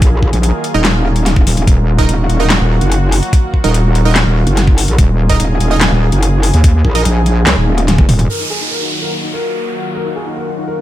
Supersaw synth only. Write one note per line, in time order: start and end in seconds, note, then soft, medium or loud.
0.74 0.80 D#4 loud
0.74 0.80 A#4 loud
0.74 0.80 D#5 loud
1.99 2.04 D#4 loud
1.99 2.04 A#4 medium
1.99 2.04 D#5 loud
2.40 2.45 D#4 loud
2.40 2.45 A#4 medium
2.40 2.45 D#5 loud
3.64 3.70 D#4 loud
3.64 3.70 A#4 medium
3.64 3.70 D#5 loud
4.05 4.11 D#4 loud
4.05 4.11 A#4 loud
4.05 4.11 D#5 loud
5.30 5.35 D#4 loud
5.30 5.35 A#4 medium
5.30 5.35 D#5 loud
5.71 5.77 D#4 medium
5.71 5.77 A#4 medium
5.71 5.77 D#5 loud
6.95 7.01 D#4 loud
6.95 7.01 A#4 medium
6.95 7.01 D#5 loud